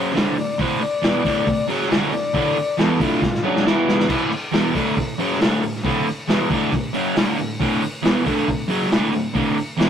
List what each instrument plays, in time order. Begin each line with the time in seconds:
Already playing: overdriven electric guitar F#2 C#3 F#3, transistor combo organ C5
0.14 overdriven electric guitar D2 A2 D3, transistor combo organ C5, snare, open hi-hat
0.36 overdriven electric guitar D2 A2, transistor combo organ D5, open hi-hat
0.58 overdriven electric guitar D2 A2 D3, transistor combo organ C5, kick, open hi-hat
0.81 transistor combo organ D5, muted overdriven electric guitar stroke, open hi-hat
1.02 overdriven electric guitar E2 B2 E3, snare, open hi-hat
1.23 overdriven electric guitar D2 A2 D3, kick, open hi-hat
1.46 overdriven electric guitar D2 A2, kick, open hi-hat
1.68 overdriven electric guitar F#2 C#3 F#3, open hi-hat
1.81 snare
1.90 overdriven electric guitar D2 A2 D3, snare, open hi-hat
2.09 overdriven electric guitar D2 A2, transistor combo organ C#5, open hi-hat
2.14 transistor combo organ D5
2.33 overdriven electric guitar D2 A2 D3, kick, open hi-hat
2.56 muted overdriven electric guitar stroke, open hi-hat
2.77 overdriven electric guitar E2 B2 E3, transistor combo organ A4, snare, open hi-hat
2.99 overdriven electric guitar D2 A2 D3, transistor combo organ F4, kick, open hi-hat
3.22 overdriven electric guitar D2 A2, kick, snare
3.34 snare
3.43 overdriven electric guitar F#2 C#3 F#3
3.47 transistor combo organ D4
3.56 snare
3.64 overdriven electric guitar E2 B2 E3, transistor combo organ E4, snare
3.89 snare
4.00 snare
4.08 overdriven electric guitar D2 A2 D3, kick, crash
4.30 muted overdriven electric guitar stroke, open hi-hat
4.52 overdriven electric guitar E2 B2 E3, snare, open hi-hat
4.74 overdriven electric guitar D2 A2 D3, kick, open hi-hat
4.96 overdriven electric guitar D2 A2, kick, open hi-hat
5.18 overdriven electric guitar F#2 C#3 F#3, open hi-hat
5.31 snare
5.40 overdriven electric guitar D2 A2 D3, snare, open hi-hat
5.63 overdriven electric guitar D2 A2, open hi-hat
5.75 snare
5.83 overdriven electric guitar D2 A2 D3, kick, open hi-hat
6.06 muted overdriven electric guitar stroke, open hi-hat
6.28 overdriven electric guitar E2 B2 E3, snare, open hi-hat
6.50 overdriven electric guitar D2 A2 D3, kick, open hi-hat
6.72 overdriven electric guitar D2 A2, kick, open hi-hat
6.93 overdriven electric guitar F#2 C#3 F#3, open hi-hat
7.16 overdriven electric guitar D2 A2 D3, snare, open hi-hat
7.38 overdriven electric guitar D2 A2, open hi-hat
7.60 overdriven electric guitar D2 A2 D3, kick, open hi-hat
7.82 muted overdriven electric guitar stroke, open hi-hat
8.02 overdriven electric guitar E2 B2 E3, snare, open hi-hat
8.25 overdriven electric guitar D2 A2 D3, kick, open hi-hat
8.48 overdriven electric guitar D2 A2, kick, open hi-hat
8.68 overdriven electric guitar F#2 C#3 F#3, open hi-hat
8.82 snare
8.91 overdriven electric guitar D2 A2 D3, snare, open hi-hat
9.13 overdriven electric guitar D2 A2, open hi-hat
9.34 overdriven electric guitar D2 A2 D3, kick, open hi-hat
9.57 muted overdriven electric guitar stroke, open hi-hat
9.78 overdriven electric guitar E2 B2 E3, snare, open hi-hat